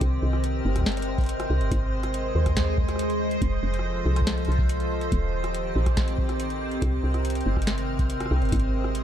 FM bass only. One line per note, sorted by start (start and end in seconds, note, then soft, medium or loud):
0.01 0.19 C2 loud
0.23 0.62 C2 medium
0.65 1.50 G1 medium
1.50 1.62 C2 medium
1.61 1.70 G1 loud
1.72 2.32 G#1 loud
2.35 3.39 D#2 medium
3.42 3.59 F1 loud
3.63 4.03 F1 medium
4.06 4.48 C2 medium
4.48 5.09 C2 medium
5.12 5.73 D#1 medium
5.76 6.79 A#1 medium
6.82 7.00 C2 loud
7.04 7.43 C2 medium
7.46 8.31 G1 medium
8.31 8.43 C2 medium
8.42 8.50 G1 loud
8.52 9.04 G#1 loud